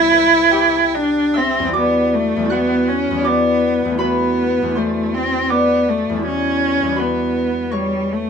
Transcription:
0.00 1.70 C2 medium
0.00 1.61 G3 medium
0.00 1.64 B3 soft
0.00 0.96 E4 medium
0.00 1.68 E4 soft
0.00 1.71 F#4 soft
0.00 1.78 C5 medium
0.00 0.88 E5 medium
0.00 0.44 G5 medium
0.00 1.77 C6 loud
0.00 0.87 E6 loud
0.00 0.43 G6 medium
0.11 3.99 B4 medium
0.11 3.97 B5 medium
0.51 4.03 G4 medium
0.51 4.03 G5 medium
0.95 1.39 D4 medium
1.34 1.76 C4 medium
1.34 5.25 E5 medium
1.34 5.24 E6 loud
1.59 2.35 E2 medium
1.59 2.38 G3 soft
1.66 2.41 B3 soft
1.66 2.45 E4 soft
1.72 2.48 F#4 soft
1.72 3.24 D5 medium
1.72 3.23 D6 medium
1.77 2.15 B3 medium
2.14 2.53 A3 medium
2.36 3.09 E2 medium
2.36 3.13 G3 soft
2.43 3.16 B3 soft
2.43 3.19 E4 soft
2.49 2.90 B3 medium
2.49 3.22 F#4 soft
2.49 6.41 F#5 medium
2.49 6.40 F#6 medium
2.88 3.28 C#4 medium
3.11 3.84 E2 medium
3.11 3.98 G3 soft
3.17 3.99 B3 soft
3.17 3.93 E4 soft
3.23 4.01 B3 medium
3.23 3.96 F#4 soft
3.23 5.50 D5 medium
3.23 5.49 D6 medium
3.85 4.61 E2 medium
3.85 4.64 A3 soft
3.92 4.67 D4 soft
3.92 4.70 E4 soft
3.98 4.79 B3 medium
3.98 4.73 F#4 soft
3.98 6.96 B4 medium
3.98 5.27 B5 loud
4.62 6.08 E2 medium
4.62 6.22 A3 soft
4.69 6.15 D4 soft
4.69 6.18 E4 soft
4.75 5.16 A3 medium
4.75 6.21 F#4 soft
4.75 6.28 C5 medium
4.75 6.27 C6 medium
5.14 5.52 C4 medium
5.50 5.91 B3 medium
5.50 8.30 D5 medium
5.50 8.30 D6 medium
5.89 6.25 A3 medium
6.10 6.82 E2 medium
6.10 6.85 G3 soft
6.16 6.88 D4 soft
6.16 6.91 E4 soft
6.22 7.01 C#4 medium
6.22 6.94 F#4 soft
6.83 8.30 E2 medium
6.83 8.30 G3 soft
6.89 8.30 D4 soft
6.89 8.30 E4 soft
6.95 8.30 F#4 soft
6.95 8.30 B4 medium
6.95 8.30 B5 medium
7.00 7.75 B3 medium
7.71 8.14 G3 medium
7.71 8.30 C#5 medium
7.71 8.30 C#6 medium
8.12 8.30 A3 medium

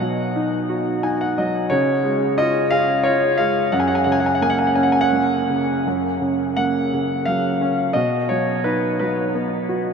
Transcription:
0.00 1.67 B2 medium
0.00 1.33 F#3 soft
0.00 0.31 F#5 medium
0.36 1.02 D#4 medium
0.70 1.68 F#4 soft
1.03 1.68 D#4 medium
1.03 1.19 G#5 medium
1.21 1.36 F#5 medium
1.38 1.70 F#3 soft
1.38 1.69 D#5 medium
1.70 3.69 C#3 medium
1.70 2.39 C#5 medium
2.04 3.34 G#3 medium
2.38 3.03 F4 medium
2.38 2.69 D#5 medium
2.71 3.70 G#4 medium
2.71 3.05 F5 medium
3.03 3.71 F4 medium
3.03 3.39 C#5 medium
3.38 3.72 G#3 medium
3.38 3.70 F5 medium
3.72 5.82 F#2 medium
3.72 3.80 F#5 medium
3.80 3.88 G#5 medium
3.88 3.96 F#5 medium
3.95 4.04 G#5 medium
4.04 5.46 C#3 soft
4.04 4.12 F#5 medium
4.12 4.20 G#5 medium
4.20 4.28 F#5 medium
4.26 4.35 G#5 medium
4.35 4.43 F#5 medium
4.42 5.11 A#3 soft
4.42 4.51 G#5 medium
4.50 4.59 F#5 medium
4.59 4.67 G#5 medium
4.67 4.76 F#5 medium
4.75 5.83 C#4 soft
4.75 4.84 G#5 medium
4.83 4.92 F#5 medium
4.92 5.01 G#5 medium
5.01 5.46 F#5 medium
5.13 5.84 A#3 soft
5.50 5.85 C#3 soft
5.87 7.92 F#2 medium
6.21 6.92 C#3 soft
6.57 7.91 A#3 soft
6.57 7.29 F#5 medium
6.93 7.93 C#3 soft
7.25 7.94 F#3 soft
7.25 7.91 F5 medium
7.61 7.95 C#4 soft
7.93 9.93 B2 medium
7.93 8.30 D#5 medium
8.29 8.99 F#3 soft
8.29 8.66 C#5 medium
8.64 9.93 D#4 soft
8.64 8.98 B4 medium
8.99 9.93 F#3 soft
8.99 9.64 B4 medium
9.35 9.93 B3 soft
9.69 9.93 F#4 medium

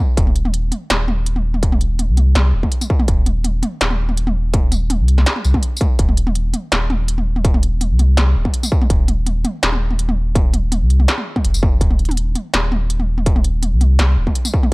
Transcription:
0.17 0.71 D#1 loud
0.17 kick loud
0.17 closed hi-hat medium
0.27 mid tom soft
0.36 closed hi-hat medium
0.45 mid tom medium
0.54 closed hi-hat medium
0.72 closed hi-hat medium
0.72 mid tom medium
0.90 2.10 D#1 medium
0.90 snare loud
0.90 closed hi-hat medium
0.90 mid tom medium
1.08 mid tom medium
1.26 closed hi-hat medium
1.36 mid tom soft
1.54 mid tom medium
1.63 kick loud
1.63 closed hi-hat medium
1.72 mid tom medium
1.81 closed hi-hat medium
1.99 closed hi-hat medium
1.99 mid tom medium
2.09 2.34 C2 medium
2.17 closed hi-hat medium
2.17 mid tom medium
2.35 2.52 C2 medium
2.35 snare loud
2.35 closed hi-hat medium
2.35 mid tom medium
2.54 2.62 D#1 loud
2.63 kick medium
2.63 mid tom medium
2.72 closed hi-hat medium
2.81 mid tom medium
2.81 tambourine medium
2.90 kick loud
3.00 mid tom medium
3.08 3.62 D#1 loud
3.08 kick loud
3.08 closed hi-hat medium
3.26 closed hi-hat medium
3.26 mid tom medium
3.44 closed hi-hat medium
3.44 mid tom medium
3.63 closed hi-hat medium
3.63 mid tom medium
3.81 5.01 D#1 medium
3.81 snare loud
3.81 closed hi-hat medium
3.91 mid tom medium
4.09 mid tom medium
4.17 closed hi-hat medium
4.27 mid tom medium
4.54 kick loud
4.54 closed hi-hat medium
4.54 mid tom medium
4.72 closed hi-hat medium
4.72 mid tom medium
4.72 tambourine soft
4.90 closed hi-hat medium
4.90 mid tom medium
5.00 5.25 C2 medium
5.08 closed hi-hat medium
5.18 snare soft
5.18 mid tom medium
5.26 snare loud
5.26 closed hi-hat medium
5.36 mid tom medium
5.45 5.54 C2 medium
5.45 tambourine soft
5.54 kick medium
5.54 mid tom medium
5.63 closed hi-hat medium
5.77 tambourine medium
5.81 kick loud
5.81 closed hi-hat soft
5.81 mid tom medium
5.99 6.53 D#1 loud
5.99 kick loud
5.99 closed hi-hat medium
6.09 mid tom medium
6.17 closed hi-hat medium
6.27 mid tom medium
6.35 closed hi-hat medium
6.54 closed hi-hat medium
6.54 mid tom medium
6.72 7.92 D#1 medium
6.72 snare loud
6.72 closed hi-hat medium
6.72 mid tom medium
6.90 mid tom medium
7.08 closed hi-hat medium
7.18 mid tom medium
7.36 mid tom medium
7.45 kick loud
7.45 closed hi-hat medium
7.54 mid tom medium
7.63 closed hi-hat medium
7.81 closed hi-hat medium
7.81 mid tom medium
7.91 8.16 C2 medium
7.99 closed hi-hat medium
7.99 mid tom medium
8.17 8.34 C2 medium
8.17 snare loud
8.17 closed hi-hat medium
8.17 mid tom medium
8.36 8.44 D#1 loud
8.45 kick medium
8.45 mid tom medium
8.54 closed hi-hat medium
8.63 mid tom medium
8.63 tambourine medium
8.72 kick loud
8.82 mid tom medium
8.90 9.44 D#1 loud
8.90 kick loud
8.90 closed hi-hat medium
9.08 closed hi-hat medium
9.08 mid tom soft
9.26 closed hi-hat medium
9.26 mid tom medium
9.45 closed hi-hat medium
9.45 mid tom medium
9.63 10.83 D#1 medium
9.63 snare loud
9.63 closed hi-hat medium
9.72 mid tom medium
9.91 mid tom medium
9.99 closed hi-hat medium
10.09 mid tom medium
10.35 kick loud
10.35 closed hi-hat medium
10.35 mid tom soft
10.54 closed hi-hat medium
10.54 mid tom soft
10.72 closed hi-hat medium
10.72 mid tom medium
10.81 11.07 C2 medium
10.90 closed hi-hat medium
11.00 mid tom medium
11.08 snare loud
11.08 closed hi-hat medium
11.18 mid tom medium
11.36 kick medium
11.36 mid tom medium
11.45 11.80 F1 medium
11.45 closed hi-hat medium
11.54 tambourine medium
11.63 kick loud
11.63 mid tom medium
11.81 12.34 D#1 loud
11.81 kick loud
11.81 closed hi-hat medium
11.91 mid tom medium
11.99 closed hi-hat soft
12.05 closed hi-hat soft
12.05 mid tom medium
12.11 closed hi-hat soft
12.17 closed hi-hat medium
12.35 closed hi-hat medium
12.35 mid tom medium
12.54 13.74 D#1 medium
12.54 snare loud
12.54 closed hi-hat medium
12.54 mid tom medium
12.72 mid tom medium
12.90 closed hi-hat medium
13.00 mid tom medium
13.18 mid tom medium
13.26 kick loud
13.26 closed hi-hat medium
13.36 mid tom medium
13.44 closed hi-hat medium
13.63 closed hi-hat medium
13.63 mid tom medium
13.72 13.98 C2 medium
13.81 closed hi-hat medium
13.81 mid tom medium
13.99 14.16 C2 medium
13.99 snare loud
13.99 closed hi-hat medium
13.99 mid tom medium
14.17 14.26 D#1 loud
14.27 kick medium
14.27 mid tom medium
14.35 closed hi-hat medium
14.45 mid tom medium
14.45 tambourine medium
14.54 kick loud
14.63 mid tom medium

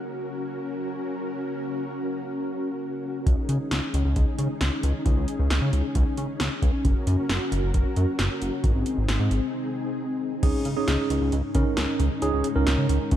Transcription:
0.00 3.23 C#4 medium
0.00 3.23 F#4 medium
0.00 3.23 A#4 medium
3.26 3.36 C#2 loud
3.26 8.60 C#4 medium
3.26 6.81 D#4 medium
3.26 6.81 G#4 medium
3.26 kick loud
3.26 closed hi-hat medium
3.49 3.58 C#3 medium
3.49 closed hi-hat medium
3.71 3.81 C#2 loud
3.71 snare loud
3.71 closed hi-hat medium
3.94 4.03 C#2 loud
3.94 closed hi-hat medium
4.05 4.14 C#2 loud
4.16 4.25 C#2 loud
4.16 kick medium
4.16 closed hi-hat medium
4.38 4.48 C#3 loud
4.38 closed hi-hat medium
4.61 4.70 C#2 loud
4.61 snare loud
4.61 closed hi-hat medium
4.83 4.93 C#2 loud
4.83 closed hi-hat medium
5.06 5.15 C#2 loud
5.06 kick loud
5.06 closed hi-hat medium
5.17 5.26 C#2 medium
5.28 closed hi-hat medium
5.39 5.49 C#2 loud
5.50 5.60 C#2 loud
5.50 snare loud
5.50 closed hi-hat medium
5.62 5.71 C#3 medium
5.73 5.82 C#2 loud
5.73 closed hi-hat medium
5.95 6.05 C#2 loud
5.95 kick medium
5.95 closed hi-hat medium
6.18 6.27 C#3 medium
6.18 closed hi-hat medium
6.40 6.49 C#2 loud
6.40 snare loud
6.40 closed hi-hat medium
6.62 6.72 C#2 loud
6.62 kick medium
6.62 closed hi-hat medium
6.85 6.94 F#1 loud
6.85 8.62 F#4 medium
6.85 8.62 A#4 medium
6.85 kick loud
6.85 closed hi-hat medium
7.07 7.16 F#2 loud
7.07 closed hi-hat medium
7.29 7.39 F#1 loud
7.29 snare loud
7.29 closed hi-hat medium
7.52 7.61 F#1 loud
7.52 closed hi-hat medium
7.63 7.72 F#1 loud
7.74 7.84 F#1 loud
7.74 kick medium
7.74 closed hi-hat medium
7.96 8.06 F#2 loud
7.96 closed hi-hat medium
8.19 8.29 F#1 medium
8.19 snare loud
8.19 closed hi-hat medium
8.42 8.51 F#1 loud
8.42 closed hi-hat medium
8.64 8.73 G#1 loud
8.64 10.41 C4 medium
8.64 10.41 D#4 medium
8.64 10.41 G#4 medium
8.64 kick loud
8.64 closed hi-hat medium
8.75 8.84 G#1 medium
8.86 closed hi-hat medium
8.97 9.07 G#1 medium
9.08 9.18 G#1 loud
9.08 snare loud
9.08 closed hi-hat medium
9.20 9.29 G#2 medium
9.31 9.40 G#1 loud
9.31 closed hi-hat medium
10.43 10.52 C#2 loud
10.43 13.16 G#3 medium
10.43 13.16 C#4 medium
10.43 10.68 C#4 medium
10.43 13.16 D#4 medium
10.43 10.68 D#4 medium
10.43 10.68 G#4 medium
10.43 kick loud
10.43 closed hi-hat medium
10.43 crash medium
10.65 10.75 C#3 medium
10.65 closed hi-hat medium
10.77 11.34 C#4 medium
10.77 11.34 D#4 medium
10.77 11.34 G#4 medium
10.88 10.97 C#2 loud
10.88 snare loud
10.88 closed hi-hat medium
11.10 11.19 C#2 loud
11.10 closed hi-hat medium
11.21 11.31 C#2 loud
11.32 11.42 C#2 loud
11.32 closed hi-hat medium
11.55 11.64 C#3 loud
11.55 12.04 C#4 medium
11.55 12.04 D#4 medium
11.55 12.04 A#4 medium
11.55 kick medium
11.55 closed hi-hat medium
11.77 11.87 C#2 loud
11.77 snare loud
11.77 closed hi-hat medium
12.00 12.09 C#2 loud
12.00 closed hi-hat medium
12.22 12.31 C#2 loud
12.22 12.47 C#4 medium
12.22 12.47 D#4 medium
12.22 12.47 G#4 loud
12.22 closed hi-hat medium
12.33 12.43 C#2 medium
12.44 closed hi-hat medium
12.56 12.65 C#2 loud
12.56 13.13 C#4 medium
12.56 13.13 D#4 medium
12.56 13.13 A#4 medium
12.67 12.76 C#2 loud
12.67 snare loud
12.67 closed hi-hat medium
12.78 12.87 C#3 medium
12.89 12.99 C#2 loud
12.89 closed hi-hat medium
13.11 13.16 C#2 loud
13.11 kick medium
13.11 closed hi-hat medium

